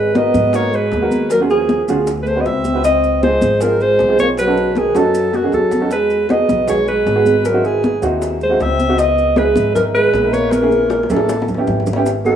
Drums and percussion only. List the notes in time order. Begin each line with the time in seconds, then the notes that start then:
0.15 high bongo, high conga, maracas
0.34 high bongo, high conga, low conga, maracas
0.53 high bongo, high conga, maracas
0.73 high conga, maracas
0.92 high bongo, low bongo, high conga, maracas
1.11 high bongo, high conga, maracas
1.30 high bongo, high conga, maracas
1.50 high conga, maracas
1.69 high bongo, high conga, maracas
1.88 high bongo, high conga, maracas
2.07 high bongo, high conga, maracas
2.26 high bongo, high conga, maracas
2.45 high bongo, low bongo, high conga, maracas
2.65 high bongo, high conga, maracas
2.84 high bongo, maracas
3.04 high bongo, high conga, maracas
3.23 high bongo, high conga, maracas
3.42 high bongo, high conga, low conga, maracas
3.61 high bongo, high conga, maracas
3.81 high conga, maracas
3.99 high bongo, low bongo, high conga, maracas
4.18 high bongo, high conga, maracas
4.37 high bongo, maracas
4.57 high conga, maracas
4.75 high bongo, high conga, maracas
4.95 high bongo, high conga, maracas
5.15 high conga, maracas
5.33 low bongo, high conga, maracas
5.52 low bongo, high conga, maracas
5.71 low bongo, high conga, maracas
5.91 high bongo, high conga, maracas
6.10 high bongo, high conga, maracas
6.29 high bongo, high conga, maracas
6.48 high bongo, high conga, low conga, maracas
6.68 high bongo, high conga, low conga, maracas
6.88 high conga, maracas
7.07 high bongo, low bongo, high conga, maracas
7.26 high bongo, high conga, maracas
7.45 high bongo, high conga, maracas
7.64 high conga, maracas
7.84 high bongo, high conga, maracas
8.03 high conga, maracas
8.22 high bongo, high conga, maracas
8.41 high bongo, high conga, maracas
8.60 high bongo, low bongo, high conga, maracas
8.79 high conga, maracas
8.98 high bongo, high conga, maracas
9.18 high bongo, high conga, maracas
9.36 high bongo, high conga, maracas
9.56 high conga, low conga, maracas
9.75 high bongo, high conga, low conga, maracas
9.94 high conga, maracas
10.13 high bongo, low bongo, high conga, maracas
10.33 high bongo, high conga, maracas
10.51 high bongo, high conga, maracas
10.71 high conga, maracas
10.90 high bongo, maracas
11.03 high bongo
11.10 low conga, maracas
11.16 high bongo
11.29 high bongo, maracas
11.42 low bongo
11.48 low conga, maracas
11.54 low bongo
11.67 low bongo, low conga, maracas
11.80 low bongo
11.86 low conga, maracas
11.93 low bongo
12.06 high bongo, high conga, maracas
12.25 high bongo, high conga, maracas